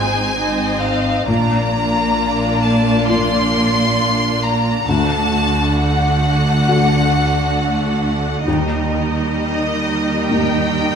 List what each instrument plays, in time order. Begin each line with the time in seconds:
Already playing: double bass section G#1, felt piano G#2 C4 D#4 G#4, cello section G#2, viola section C4 D#4, violin section G#4 C5 G#5
0.35 viola section C4 D#4, violin section C5 D#5
0.81 violin section F5
1.26 double bass section A#1, cello section A#2, felt piano A#2, viola section A#3 D4, violin section F4 D5 A#5
2.62 violin section A5
3.08 felt piano A#3 D4 F4, violin section C6
4.42 violin section A#5
4.87 double bass section D2, felt piano D2, cello section D3, viola section A3 D4, violin section F#4 F#5 A5
5.77 violin section F#5
6.68 felt piano A3 D4 F#4
8.47 double bass section D#2, felt piano D#2, cello section D#3, viola section G3 D#4, violin section A#4 D#5
9.38 violin section D#5
10.29 felt piano G3 A#3 D#4, violin section G5